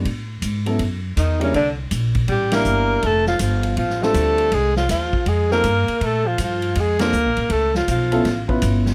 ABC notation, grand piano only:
X:1
M:4/4
L:1/8
Q:"Swing" 1/4=161
K:F
V:1 name="Grand piano"
z3 [^F,=B,^CEA] z3 [G,_B,DEB] | z4 z [G,B,DEB]3 | z4 z [G,CDFA]3 | z4 z [G,C_EFA] z2 |
z4 z [B,CDFA] z2 | z3 [_C_DEFA] z [CDEF_c]3 |]